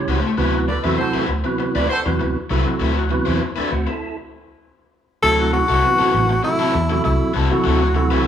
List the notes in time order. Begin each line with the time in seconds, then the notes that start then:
Already playing: C#3 E3 G3 C#4
0.08 C#2 A3 C#4 G4 C5
0.24 muted overdriven electric guitar stroke
0.38 D2 C3 E3 F#3 B3 C4 E4 B4
0.55 muted overdriven electric guitar stroke
0.68 A4 B4 D5, muted overdriven electric guitar stroke
0.84 E2 C3 E3 F#3 A3 C4 E4 B4 C5 E5
0.98 F#4 A4 C5, muted overdriven electric guitar stroke
1.14 F#3 C4 E4 B4, muted fingered electric bass stroke
1.28 D2, muted overdriven electric guitar stroke
1.44 C3 E3 F#3 B3, muted overdriven electric guitar stroke
1.59 muted overdriven electric guitar stroke
1.75 D2 F#3 C4 E4 A4 B4 D5
1.89 F#4 A4 C5, muted overdriven electric guitar stroke
2.06 E2 C3 E3 F#3 B3, muted overdriven electric guitar stroke
2.20 D2, muted overdriven electric guitar stroke
2.50 C2 C3 E3 F#3 A3 C4 E4 B4
2.66 muted overdriven electric guitar stroke
2.80 D2 F#3 C4 E4 B4
2.96 muted overdriven electric guitar stroke
3.09 C3 E3 F#3 B3, muted overdriven electric guitar stroke
3.25 E2 F#3 C4 E4 C5
3.40 muted overdriven electric guitar stroke
3.56 F#3 A3 C4 D4 E4 B4, muted fingered electric bass stroke
3.71 D2 C4 F#4, muted overdriven electric guitar stroke
3.87 E4 A4, muted overdriven electric guitar stroke
5.23 D2 C3 E3 F#3 A3 C4 E4 A4
5.39 muted overdriven electric guitar stroke
5.53 F#4, muted overdriven electric guitar stroke
5.69 C2 F#3 C4 E4 A4
5.83 C3 E3 F#3 B3, muted overdriven electric guitar stroke
5.99 F#3 C4 E4 A4, muted fingered electric bass stroke
6.14 A1, muted overdriven electric guitar stroke
6.30 muted overdriven electric guitar stroke
6.43 C3 E3 F#3 A3 E4, muted overdriven electric guitar stroke
6.59 F#3 C4 E4 A4
6.74 E2, muted overdriven electric guitar stroke
6.90 C3 E3 F#3 A3, muted overdriven electric guitar stroke
7.04 C2 E4, muted overdriven electric guitar stroke
7.34 C2 F#3 C4 E4 A4
7.50 C3 E3 F#3 A3 F#4, muted overdriven electric guitar stroke
7.64 D2 F#3 C4 E4 A4
7.80 muted overdriven electric guitar stroke
7.95 C3 E3 F#3 A3, muted overdriven electric guitar stroke
8.11 C2 F#3 C4 E4 B4